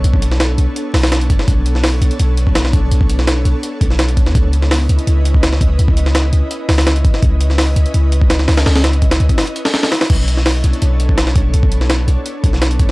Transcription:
<<
  \new Staff \with { instrumentName = "Ambient pad" } { \time 4/4 \key cis \phrygian \tempo 4 = 167 <b d' a' cis''>2~ <b d' a' cis''>8 r4. | <b d' a' cis''>2.~ <b d' a' cis''>8 r8 | <b d' a' cis''>2~ <b d' a' cis''>8 r4. | <cis' e' b' dis''>2.~ <cis' e' b' dis''>8 r8 |
<cis' e' b' dis''>2~ <cis' e' b' dis''>8 r4. | <cis' e' b' dis''>2.~ <cis' e' b' dis''>8 r8 | <cis' e' b' dis''>2~ <cis' e' b' dis''>8 r4. | <b d' a' cis''>2.~ <b d' a' cis''>8 r8 |
<b d' a' cis''>2~ <b d' a' cis''>8 r4. | }
  \new Staff \with { instrumentName = "808-style bass" } { \clef bass \time 4/4 \key cis \phrygian b,,4. b,,16 r8. b,,4 fis,,16 r16 | b,,4. b,,16 r16 b,,4. b,,8 | b,,4. b,,16 r8. b,,4~ b,,16 e,16 | cis,4. cis,16 r16 cis,4. cis,8 |
cis,4. cis,16 r8. cis,4 gis,,16 r16 | cis,4. cis,16 r16 cis,4. cis,8 | cis,4. cis,16 r2 r16 | b,,4. b,,16 r16 b,,4. b,,8 |
b,,4. b,,16 r8. b,,4 fis,,16 r16 | }
  \new DrumStaff \with { instrumentName = "Drums" } \drummode { \time 4/4 hh16 bd16 hh16 sn16 <hh sn>8 hh8 hh8 <hho sn>16 <hho sn>16 <hh sn>16 hh16 <hh bd>16 sn16 | <hh bd>8 hh16 sn16 <hho sn>8 hh16 hh16 hh8 hh16 bd16 <hh sn>16 sn16 <hh bd>8 | hh16 bd16 hh16 sn16 <hh sn>8 hh8 hh8 <hh bd>16 sn16 <hh sn>16 hh16 <hh bd>16 sn16 | <hh bd>8 hh16 sn16 <hho sn>8 hh16 hh16 hh8 hh16 bd16 <hh sn>16 sn16 <hh bd>8 |
hh16 bd16 hh16 sn16 <hh sn>8 hh8 hh8 <hho sn>16 <hho sn>16 <hh sn>16 hh16 <hh bd>16 sn16 | <hh bd>8 hh16 sn16 <hho sn>8 hh16 hh16 hh8 hh16 bd16 <hh sn>16 sn16 <hho sn>16 <hho sn>16 | <hho sn>16 <hho sn>16 <hh sn>16 hh16 <hh bd>16 <hh sn>16 hh16 <hh bd>16 <hho sn>16 hh16 hh16 <hho sn>16 <hho sn>16 <hho sn>16 <hho sn>16 <hho sn>16 | <cymc hh bd>8 hh16 sn16 <hho sn>8 hh16 hh16 hh8 hh16 bd16 <hh sn>16 sn16 <hh bd>8 |
hh16 bd16 hh16 sn16 <hh sn>8 hh8 hh8 <hh bd>16 sn16 <hh sn>16 hh16 <hh bd>8 | }
>>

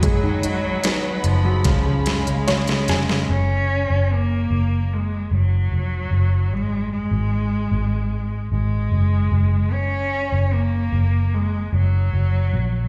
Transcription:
<<
  \new Staff \with { instrumentName = "String section" } { \time 4/4 \key fis \major \tempo 4 = 75 << { b''1 | r1 | r1 | r1 | } \\ { <gis' dis'' fis''>2 <gis' cis'' eis''>2 | r1 | r1 | r1 | } >> }
  \new Staff \with { instrumentName = "Steel-string acoustic guitar" } { \time 4/4 \key fis \major gis'8 dis'8 <b dis' gis'>4 cis8 gis'4. | r1 | r1 | r1 | }
  \new Staff \with { instrumentName = "Cello" } { \clef bass \time 4/4 \key fis \major fis4. eis4 gis4. | cis'4 ais4 gis8 fis4. | gis8 gis2 gis4. | cis'4 ais4 gis8 fis4. | }
  \new Staff \with { instrumentName = "Grand piano" } { \time 4/4 \key fis \major r2. cis''8 gis''8 | r1 | r1 | r1 | }
  \new Staff \with { instrumentName = "Grand piano" } { \clef bass \time 4/4 \key fis \major gis16 dis4. fis16 cis16 cis16 cis16 cis16 cis16 cis16 cis16 cis16 | r1 | r1 | r1 | }
  \new Staff \with { instrumentName = "Fingered electric bass" } { \clef bass \time 4/4 \key fis \major fis,,4. fis,,8 cis,4. eis,,8 | fis,,8. fis,,8. fis,,4 fis,,8 eis,,8 fis,,8 | gis,,8. gis,,8. gis,,4 gis,,8 fis,,8 fis,,8~ | fis,,8. fis,,8. fis,,4 fis,,8 fis,,8 ais,,8 | }
  \new DrumStaff \with { instrumentName = "Drums" } \drummode { \time 4/4 <hh bd>8 hh8 <hh sn>8 hh8 <hh bd sn>8 <hh sn>16 hh16 <hh sn>16 <hh sn>16 <hh sn>16 sn16 | r4 r4 r4 r4 | r4 r4 r4 r4 | r4 r4 r4 r4 | }
>>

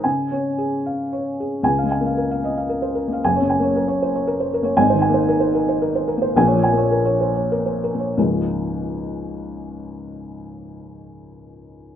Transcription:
<<
  \new Staff \with { instrumentName = "Felt piano" } { \time 3/4 \key des \major \tempo 4 = 111 << { aes''4 r2 | aes''8 r2 r8 | aes''8 r2 r8 | aes''8 r2 r8 |
aes''8 r2 r8 | <des, aes, f aes bes des'>2.~ | <des, aes, f aes bes des'>2. | } \\ { r8 des''8 aes'8 f''8 des''8 aes'8 | r16 f''16 aes''16 f''16 bes'16 f''16 ees''16 f''16 bes'16 c''16 bes'16 f''16 | r16 des''16 aes''16 des''16 bes'16 des''16 c''16 des''16 bes'16 c''16 bes'16 des''16 | r16 c''16 aes''16 c''16 bes'16 c''16 bes'16 c''16 bes'16 c''16 bes'16 c''16 |
r16 des''16 aes''16 des''16 bes'16 des''16 c''16 des''16 bes'16 c''16 bes'16 des''16 | r2. | r2. | } >> }
  \new Staff \with { instrumentName = "Felt piano" } { \clef bass \time 3/4 \key des \major des8 des'4 r4. | \tuplet 3/2 { <des, des>8 aes8 bes8 } r4 \tuplet 3/2 { r4 bes8 } | \tuplet 3/2 { <ges,, ges,>8 des8 bes8 } r4 \tuplet 3/2 { r4 bes8 } | \tuplet 3/2 { <aes,, aes,>8 ees8 bes8 } r4 \tuplet 3/2 { r4 bes8 } |
\tuplet 3/2 { <bes,, bes,>8 f8 bes8 } r4 \tuplet 3/2 { r4 bes8 } | r2. | r2. | }
>>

